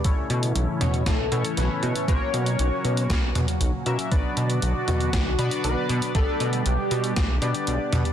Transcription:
0.04 analog synth bass B1, analog synth pad A2 C#3 E3 C#4 E4, analog polysynth A3 C#4 E4 A4 C#5, kick, closed hi-hat
0.30 analog synth bass B2, closed hi-hat
0.43 closed hi-hat
0.55 analog synth bass B1, closed hi-hat
0.81 analog synth bass B2, analog synth lead C#5, closed hi-hat, mid tom
0.94 closed hi-hat
1.06 analog synth bass B1, analog polysynth A3 C#4 E4 A4 C#5, analog synth lead A4, kick, snare, closed hi-hat
1.32 analog synth bass B2, analog polysynth A3 C#4 E4 A4 C#5, closed hi-hat
1.45 closed hi-hat
1.57 analog synth bass B1, analog synth lead B4, snare, closed hi-hat
1.83 analog synth bass B2, closed hi-hat
1.96 closed hi-hat
2.08 analog synth bass B1, analog synth pad A#2 F#3 F#4, analog polysynth A#3 C#4 F#4 A#4 C#5, analog synth lead C#5, kick, closed hi-hat
2.34 analog synth bass B2, closed hi-hat
2.46 closed hi-hat
2.59 analog synth bass B1, closed hi-hat
2.85 analog synth bass B2, closed hi-hat
2.97 closed hi-hat
3.07 analog synth bass B1, analog polysynth A#3 C#4 F#4 A#4 C#5, analog synth lead B4, kick, snare, closed hi-hat
3.35 analog synth bass B2, closed hi-hat, mid tom
3.48 closed hi-hat
3.61 analog synth bass B1, closed hi-hat
3.86 analog synth bass B2, analog polysynth A#3 C#4 F#4 A#4 E5, closed hi-hat
3.99 closed hi-hat
4.11 analog synth bass B1, analog synth pad B2 D3 D4 F#4, analog polysynth B3 D4 F#4 B4 D5, kick, closed hi-hat
4.37 analog synth bass B2, closed hi-hat
4.50 closed hi-hat
4.62 analog synth bass B1, closed hi-hat
4.88 analog synth bass B2, analog synth lead F#4, closed hi-hat, mid tom
5.00 closed hi-hat
5.13 analog synth bass B1, analog polysynth B3 D4 F#4 B4 D5, kick, snare, closed hi-hat
5.39 analog synth bass B2, analog polysynth B3 D4 F#4 B4 D5, closed hi-hat
5.51 closed hi-hat
5.64 analog synth bass B1, analog synth lead B4, closed hi-hat
5.89 analog synth bass B2, closed hi-hat
6.02 closed hi-hat
6.15 analog synth bass B1, analog synth pad D3 G3 G4, analog polysynth B3 D4 G4 B4 D5, analog synth lead A4, kick, closed hi-hat
6.40 analog synth bass B2, closed hi-hat
6.53 closed hi-hat
6.66 analog synth bass B1, analog synth lead G4, closed hi-hat
6.91 analog synth bass B2, closed hi-hat
7.04 closed hi-hat
7.16 analog synth bass B1, analog polysynth B3 D4 G4 B4 D5, kick, snare, closed hi-hat
7.42 analog synth bass B2, analog polysynth B3 D4 G4 B4 D5, closed hi-hat
7.54 closed hi-hat
7.67 analog synth bass B1, closed hi-hat
7.93 analog synth bass B2, closed hi-hat, mid tom
8.05 closed hi-hat

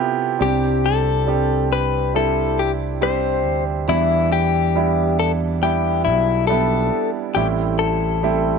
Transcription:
Already playing: grand piano C3 B3 E4 F4 G4 A4
0.39 fingered electric bass C2, grand piano C3 G3 C4 D4 G4, clean electric guitar G4
0.86 clean electric guitar A4
1.27 grand piano G3 C4 D4 G4
1.72 clean electric guitar B4
2.14 grand piano G3 C4 D4 E4, clean electric guitar A4
2.59 clean electric guitar G4
3.01 grand piano G3 C4 D4 G4, clean electric guitar C5
3.45 fingered electric bass D2
3.88 fingered electric bass E2, grand piano E3 G3 B3 D4 E4, clean electric guitar E4
4.32 clean electric guitar G4
4.75 grand piano G3 B3 D4 E4
5.19 clean electric guitar A4
5.62 grand piano G3 B3 D4 E4, clean electric guitar G4
6.05 fingered electric bass B1, clean electric guitar E4
6.47 grand piano G3 B3 D4 E4, clean electric guitar A4
7.35 fingered electric bass A1, grand piano A2 G3 A3 C4 E4, clean electric guitar G4
7.79 clean electric guitar A4
8.23 grand piano G3 A3 C4 E4

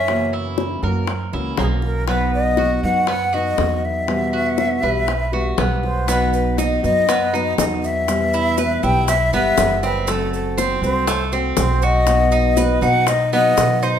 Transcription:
Already playing: upright bass F#2, cuban tres C#4, flute E5
0.08 steel-string acoustic guitar C#3 E3 A#3 C#4 F#4, high bongo
0.33 cuban tres E4
0.58 high bongo
0.83 upright bass F#2, steel-string acoustic guitar E3 A#3 C#4 F#4, cuban tres A#4, high bongo
1.07 muted steel-string acoustic guitar stroke, high bongo
1.33 upright bass C#2, steel-string acoustic guitar E3 A#3 C#4 F#4, cuban tres E4, high bongo
1.57 upright bass B1, steel-string acoustic guitar E3 A#3 C#4 F#4, cuban tres A#3, flute G#4, high bongo, low bongo
1.82 flute A#4, high bongo
2.08 steel-string acoustic guitar B2 F#3 B3 D#4 F#4, cuban tres B3, flute B4, high bongo
2.34 flute D#5
2.57 cuban tres F#4, high bongo
2.83 upright bass F#2, steel-string acoustic guitar F#3 B3 D#4 F#4, flute F#5
3.07 cuban tres B3, flute F#5, muted steel-string acoustic guitar stroke, high bongo
3.33 steel-string acoustic guitar F#3 B3 D#4 F#4, cuban tres F#4, flute D#5
3.58 upright bass E2, steel-string acoustic guitar F#3 B3 D#4 F#4, high bongo, low bongo
3.85 flute E5
4.07 steel-string acoustic guitar B2 E3 G3 B3 F#4, high bongo
4.33 cuban tres F#4
4.58 high bongo
4.82 upright bass B1, steel-string acoustic guitar E3 G3 B3 F#4, cuban tres B4, high bongo
5.07 muted steel-string acoustic guitar stroke, high bongo
5.32 steel-string acoustic guitar E3 G3 B3 F#4, cuban tres F#4, high bongo
5.57 upright bass B1, steel-string acoustic guitar E3 G3 B3 F#4, cuban tres B3, high bongo, low bongo
5.84 flute C5, high bongo
6.07 steel-string acoustic guitar B2 F#3 B3 D#4 F#4, cuban tres B3, flute B4, high bongo, maracas
6.33 flute B4, maracas
6.58 cuban tres D#4, flute D#5, high bongo, maracas
6.83 upright bass F#2, steel-string acoustic guitar F#3 B3 D#4 F#4, flute D#5, maracas
7.08 cuban tres B3, muted steel-string acoustic guitar stroke, high bongo, maracas
7.33 steel-string acoustic guitar F#3 B3 D#4 F#4, cuban tres D#4, maracas
7.58 upright bass E2, steel-string acoustic guitar F#3 B3 D#4 F#4, flute D#5, high bongo, low bongo, maracas
7.83 flute E5, maracas
8.08 steel-string acoustic guitar B2 E3 G3 B3 E4, high bongo, maracas
8.33 cuban tres E4, maracas
8.58 cuban tres B4, high bongo, maracas
8.83 upright bass B1, steel-string acoustic guitar E3 G3 B3 E4, cuban tres E4, flute G5, high bongo, maracas
9.08 flute E5, muted steel-string acoustic guitar stroke, high bongo, maracas
9.33 upright bass G1, steel-string acoustic guitar E3 G3 B3 E4, cuban tres B3, flute E5, high bongo, maracas
9.57 upright bass F#1, steel-string acoustic guitar E3 G3 B3 E4, high bongo, low bongo, maracas
9.83 cuban tres C4, flute B4, high bongo, maracas
10.07 steel-string acoustic guitar F#3 A3 C4 F#4, cuban tres A3, flute A4, high bongo, maracas
10.33 flute A4, maracas
10.58 cuban tres C4, flute C5, high bongo, maracas
10.82 upright bass C2, steel-string acoustic guitar A3 C4 F#4, flute C5, maracas
11.07 cuban tres A3, muted steel-string acoustic guitar stroke, high bongo, maracas
11.32 steel-string acoustic guitar A3 C4 F#4, cuban tres C4, maracas
11.57 upright bass B1, steel-string acoustic guitar F#3 A3 C4 F#4, flute C5, high bongo, low bongo, maracas
11.82 cuban tres F#4, flute D#5, maracas
12.07 steel-string acoustic guitar B2 F#3 B3 D#4 F#4, high bongo, maracas
12.32 cuban tres D#4, maracas
12.57 cuban tres B4, high bongo, maracas
12.81 upright bass B2, steel-string acoustic guitar F#3 B3 D#4 F#4, cuban tres D#4, flute F#5, high bongo, maracas
13.07 flute D#5, muted steel-string acoustic guitar stroke, high bongo, maracas
13.33 steel-string acoustic guitar F#3 B3 D#4 F#4, cuban tres B3, flute D#5, high bongo, maracas
13.57 upright bass B2, steel-string acoustic guitar D#4 F#4, high bongo, low bongo, maracas
13.83 cuban tres D#4, flute C5, high bongo, maracas

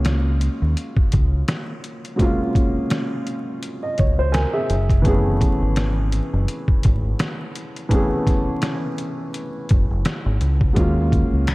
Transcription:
Already playing: fingered electric bass C#2, upright piano F#3 G#3 A#3 C#4 F4
0.05 snare, closed hi-hat
0.41 closed hi-hat
0.62 fingered electric bass D#2
0.77 closed hi-hat
0.97 kick
1.12 fingered electric bass C#2, kick, closed hi-hat
1.48 snare, closed hi-hat
1.84 closed hi-hat
2.05 closed hi-hat
2.16 upright piano F#3 G#3 A#3, kick, closed hi-hat
2.21 upright piano C#4 F4
2.55 kick, closed hi-hat
2.90 snare, closed hi-hat
3.27 closed hi-hat
3.63 closed hi-hat
3.83 upright piano D#5
3.98 fingered electric bass C#2, upright piano C#5, kick, closed hi-hat
4.19 upright piano C5
4.32 upright piano A#4 G#5, snare, closed hi-hat
4.53 upright piano G#4 E5
4.70 fingered electric bass F#1, closed hi-hat
4.90 kick, closed hi-hat
5.02 upright piano E3 A3 B3, kick, closed hi-hat
5.06 upright piano C#4 G#4
5.41 kick, closed hi-hat
5.62 fingered electric bass G#1
5.76 snare, closed hi-hat
6.12 closed hi-hat
6.33 fingered electric bass F#1
6.48 closed hi-hat
6.68 kick
6.83 fingered electric bass G#1, kick, closed hi-hat
7.19 snare, closed hi-hat
7.55 closed hi-hat
7.76 closed hi-hat
7.89 upright piano E3 A3 B3, kick, closed hi-hat
7.93 upright piano C#4 G#4
8.27 kick, snare, closed hi-hat
8.62 snare, closed hi-hat
8.98 closed hi-hat
9.34 closed hi-hat
9.69 fingered electric bass F#1, kick, closed hi-hat
9.90 fingered electric bass F#1
10.05 snare, closed hi-hat
10.26 fingered electric bass G#1
10.41 fingered electric bass C#2, closed hi-hat
10.61 kick
10.73 fingered electric bass D#2, upright piano F#3 G#3 A#3, kick, closed hi-hat
10.78 upright piano C#4 F4
11.12 kick, closed hi-hat
11.33 fingered electric bass C#2
11.47 finger snap, snare, closed hi-hat

